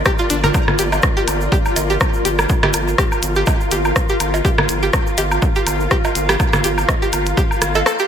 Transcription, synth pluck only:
0, 0, Header, 1, 2, 480
1, 0, Start_track
1, 0, Key_signature, -2, "minor"
1, 0, Tempo, 487805
1, 535, Time_signature, 4, 2, 24, 8
1, 7945, End_track
2, 0, Start_track
2, 0, Title_t, "Synth pluck"
2, 0, Program_c, 0, 84
2, 55, Note_on_c, 0, 67, 100
2, 116, Note_off_c, 0, 67, 0
2, 189, Note_on_c, 0, 65, 80
2, 261, Note_off_c, 0, 65, 0
2, 295, Note_on_c, 0, 62, 75
2, 386, Note_off_c, 0, 62, 0
2, 429, Note_on_c, 0, 70, 79
2, 477, Note_off_c, 0, 70, 0
2, 775, Note_on_c, 0, 67, 78
2, 812, Note_off_c, 0, 67, 0
2, 1149, Note_on_c, 0, 67, 80
2, 1221, Note_off_c, 0, 67, 0
2, 1495, Note_on_c, 0, 67, 80
2, 1532, Note_off_c, 0, 67, 0
2, 1869, Note_on_c, 0, 67, 73
2, 1941, Note_off_c, 0, 67, 0
2, 2215, Note_on_c, 0, 67, 78
2, 2252, Note_off_c, 0, 67, 0
2, 2589, Note_on_c, 0, 67, 80
2, 2661, Note_off_c, 0, 67, 0
2, 2936, Note_on_c, 0, 67, 83
2, 2972, Note_off_c, 0, 67, 0
2, 3309, Note_on_c, 0, 67, 79
2, 3381, Note_off_c, 0, 67, 0
2, 3656, Note_on_c, 0, 67, 73
2, 3692, Note_off_c, 0, 67, 0
2, 4029, Note_on_c, 0, 67, 80
2, 4101, Note_off_c, 0, 67, 0
2, 4375, Note_on_c, 0, 67, 83
2, 4411, Note_off_c, 0, 67, 0
2, 4748, Note_on_c, 0, 67, 75
2, 4821, Note_off_c, 0, 67, 0
2, 5095, Note_on_c, 0, 67, 76
2, 5132, Note_off_c, 0, 67, 0
2, 5469, Note_on_c, 0, 67, 80
2, 5541, Note_off_c, 0, 67, 0
2, 5815, Note_on_c, 0, 67, 86
2, 5851, Note_off_c, 0, 67, 0
2, 6189, Note_on_c, 0, 67, 76
2, 6261, Note_off_c, 0, 67, 0
2, 6536, Note_on_c, 0, 67, 75
2, 6572, Note_off_c, 0, 67, 0
2, 6909, Note_on_c, 0, 67, 75
2, 6981, Note_off_c, 0, 67, 0
2, 7255, Note_on_c, 0, 67, 84
2, 7292, Note_off_c, 0, 67, 0
2, 7629, Note_on_c, 0, 69, 96
2, 7677, Note_off_c, 0, 69, 0
2, 7735, Note_on_c, 0, 69, 83
2, 7796, Note_off_c, 0, 69, 0
2, 7869, Note_on_c, 0, 67, 79
2, 7941, Note_off_c, 0, 67, 0
2, 7945, End_track
0, 0, End_of_file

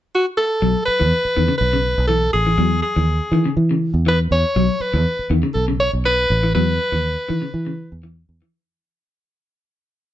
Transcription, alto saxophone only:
0, 0, Header, 1, 2, 480
1, 0, Start_track
1, 0, Tempo, 494234
1, 605, Time_signature, 4, 2, 24, 8
1, 9841, End_track
2, 0, Start_track
2, 0, Title_t, "Alto saxophone"
2, 0, Program_c, 0, 65
2, 143, Note_on_c, 0, 66, 89
2, 247, Note_off_c, 0, 66, 0
2, 362, Note_on_c, 0, 69, 88
2, 807, Note_off_c, 0, 69, 0
2, 828, Note_on_c, 0, 71, 91
2, 1512, Note_off_c, 0, 71, 0
2, 1534, Note_on_c, 0, 71, 86
2, 1989, Note_off_c, 0, 71, 0
2, 2014, Note_on_c, 0, 69, 100
2, 2246, Note_off_c, 0, 69, 0
2, 2261, Note_on_c, 0, 68, 84
2, 2712, Note_off_c, 0, 68, 0
2, 2740, Note_on_c, 0, 68, 67
2, 3426, Note_off_c, 0, 68, 0
2, 3966, Note_on_c, 0, 71, 94
2, 4071, Note_off_c, 0, 71, 0
2, 4193, Note_on_c, 0, 73, 96
2, 4674, Note_on_c, 0, 71, 80
2, 4689, Note_off_c, 0, 73, 0
2, 5154, Note_off_c, 0, 71, 0
2, 5379, Note_on_c, 0, 69, 77
2, 5490, Note_off_c, 0, 69, 0
2, 5632, Note_on_c, 0, 73, 95
2, 5741, Note_off_c, 0, 73, 0
2, 5880, Note_on_c, 0, 71, 106
2, 6326, Note_off_c, 0, 71, 0
2, 6355, Note_on_c, 0, 71, 98
2, 7764, Note_off_c, 0, 71, 0
2, 9841, End_track
0, 0, End_of_file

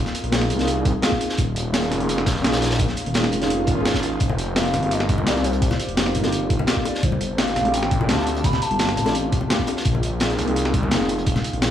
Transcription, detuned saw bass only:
0, 0, Header, 1, 2, 480
1, 0, Start_track
1, 0, Tempo, 352941
1, 1884, Time_signature, 4, 2, 24, 8
1, 15920, End_track
2, 0, Start_track
2, 0, Title_t, "Detuned saw bass"
2, 0, Program_c, 0, 39
2, 322, Note_on_c, 0, 34, 108
2, 684, Note_on_c, 0, 36, 89
2, 704, Note_off_c, 0, 34, 0
2, 1265, Note_off_c, 0, 36, 0
2, 1883, Note_on_c, 0, 27, 96
2, 2602, Note_on_c, 0, 29, 89
2, 2622, Note_off_c, 0, 27, 0
2, 3322, Note_on_c, 0, 34, 98
2, 3342, Note_off_c, 0, 29, 0
2, 3904, Note_off_c, 0, 34, 0
2, 4163, Note_on_c, 0, 27, 104
2, 4523, Note_on_c, 0, 29, 90
2, 4543, Note_off_c, 0, 27, 0
2, 5002, Note_on_c, 0, 32, 97
2, 5023, Note_off_c, 0, 29, 0
2, 5704, Note_off_c, 0, 32, 0
2, 5722, Note_on_c, 0, 29, 95
2, 6441, Note_on_c, 0, 31, 88
2, 6462, Note_off_c, 0, 29, 0
2, 7163, Note_on_c, 0, 36, 104
2, 7183, Note_off_c, 0, 31, 0
2, 7745, Note_off_c, 0, 36, 0
2, 8004, Note_on_c, 0, 29, 104
2, 8362, Note_on_c, 0, 31, 91
2, 8383, Note_off_c, 0, 29, 0
2, 8944, Note_off_c, 0, 31, 0
2, 9562, Note_on_c, 0, 31, 95
2, 10282, Note_on_c, 0, 33, 87
2, 10303, Note_off_c, 0, 31, 0
2, 11001, Note_on_c, 0, 38, 100
2, 11022, Note_off_c, 0, 33, 0
2, 11584, Note_off_c, 0, 38, 0
2, 11843, Note_on_c, 0, 31, 100
2, 12202, Note_on_c, 0, 33, 90
2, 12222, Note_off_c, 0, 31, 0
2, 12784, Note_off_c, 0, 33, 0
2, 13403, Note_on_c, 0, 34, 101
2, 14123, Note_on_c, 0, 36, 93
2, 14144, Note_off_c, 0, 34, 0
2, 14844, Note_on_c, 0, 29, 99
2, 14864, Note_off_c, 0, 36, 0
2, 15425, Note_off_c, 0, 29, 0
2, 15684, Note_on_c, 0, 34, 106
2, 15920, Note_off_c, 0, 34, 0
2, 15920, End_track
0, 0, End_of_file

